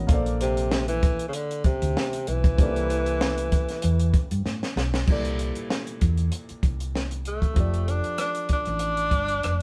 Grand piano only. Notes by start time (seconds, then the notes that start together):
Already playing: B3 F#4 A#4 C#5 D#5
0.07 A#3 A4 F5
0.11 C5 D5
2.56 G3 A#3 C4 D#4
2.61 A4 D5
2.66 E4
5.05 A#2 C3 G3
5.10 E4 A4 D5
7.53 F3 F4 G4
7.58 A4 D5